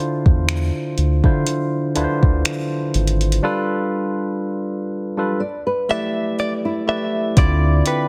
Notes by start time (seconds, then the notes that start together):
Already playing: D3 D4 E4 F4 C5
0.26 E2, kick
0.49 finger snap, closed hi-hat
0.98 D2, closed hi-hat
1.23 D3 D4 E4 F4 C5, kick
1.46 closed hi-hat
1.95 D2 D3 D4 E4 F4 B4, closed hi-hat
2.04 C5
2.23 D2, kick
2.45 finger snap, closed hi-hat
2.94 G#1, closed hi-hat
3.07 closed hi-hat
3.21 closed hi-hat
3.32 closed hi-hat
3.43 G3 D4 F4 A4 B4
5.17 G3 D4 F4 A4 B4
5.40 D5
5.67 B4
5.89 A3 E4 G4 A4 B4 D5 E5
6.38 G4 D5
6.65 E4
6.87 A3 E4 G4 B4 D5 E5
7.36 D2 D3 C4 E4 F4 D5, kick, closed hi-hat
7.86 B4 G5, closed hi-hat